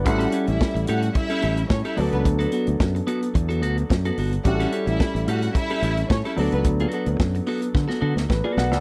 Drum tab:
HH |xxxx-xxxxxxx-xox|xxxx-xxxxxxx-xox|xxxx-xxxxxxx-xox|xxxx-xox--------|
SD |----o-------o---|----o-------o---|-o--o-------o---|----o---oo-oo-oo|
BD |o---o---o---o---|o---o---o---o---|o---o---o---o---|o---o---o---o---|